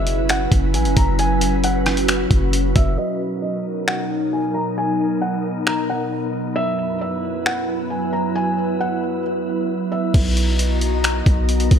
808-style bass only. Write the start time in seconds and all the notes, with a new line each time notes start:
Already playing: F#1
0.52 F#1
0.74 A#1
0.85 F#1
0.97 F#1
2.31 F#1
2.76 F#1
10.14 B1
11.26 B1
11.71 B1